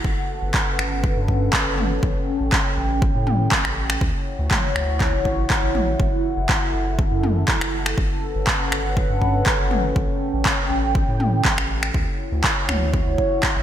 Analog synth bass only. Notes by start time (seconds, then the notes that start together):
0.04 G1
0.42 G1
0.79 G1
1.17 G2
1.66 G1
2.03 A1
2.41 A1
2.77 A1
3.15 A2
3.65 A1
4.01 D2
4.39 D2
4.76 D2
5.14 A1
5.63 A1
6.00 F#1
6.37 F#1
6.74 F#1
7.12 F#2
7.61 F#1
7.98 G1
8.36 G1
8.72 G1
9.10 G2
9.59 G1
9.96 A1
10.34 A1
10.70 A1
11.08 A2
11.58 A1
11.94 D2
12.32 D2
12.69 D2
13.07 D2
13.56 A1